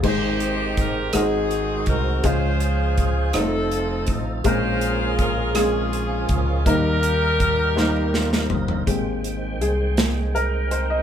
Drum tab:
CC |x-----------|------------|------------|------------|
HH |--x-x-x-x-x-|x-x-x-x-x-x-|x-x-x-x-x-x-|x-x-x-------|
SD |------r-----|------r-----|------r-----|------o-oo--|
FT |------------|------------|------------|----------oo|
BD |o---o-----o-|o---o-----o-|o---o-----o-|o---o-------|

CC |------------|
HH |x-x-x-x-x-x-|
SD |------o-----|
FT |------------|
BD |o-----------|